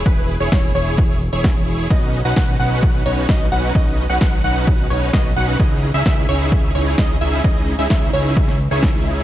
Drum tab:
HH |xxoxxxoxxxoxxxox|xxoxxxoxxxoxxxox|xxoxxxoxxxoxxxox|xxoxxxoxxxoxxxox|
SD |----o-------o---|----o-------o---|----o-------o---|----o-------o---|
BD |o---o---o---o---|o---o---o---o---|o---o---o---o---|o---o---o---o---|

HH |xxoxxxoxxxoxxxox|
SD |----o----o--o---|
BD |o---o---o---o---|